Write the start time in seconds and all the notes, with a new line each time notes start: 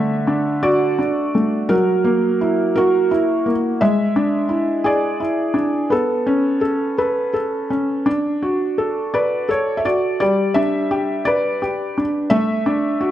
Already playing: D3 A3 E5
0.27 D4
0.63 F#4 D5
0.99 D4
1.35 A3
1.69 F#3 A#4
2.04 A#3
2.41 E4
2.76 F#4 A#4
3.11 E4
3.46 A#3
3.81 G#3 E5
4.16 D4
4.49 E4
4.84 G#4 D5
5.20 E4
5.54 D4
5.90 B3 A4
6.26 C#4
6.61 A4
6.98 A4 B4
7.34 A4
7.70 C#4
8.06 D4
8.43 F#4
8.78 A4
9.14 B4 D5
9.49 A4 C#5
9.77 E5
9.85 F#4 D5
10.20 G3 D5
10.54 D4 E5
10.91 G4
11.25 B4 D5
11.62 G4
11.98 D4
12.30 A3 E5
12.66 D4
13.01 F#4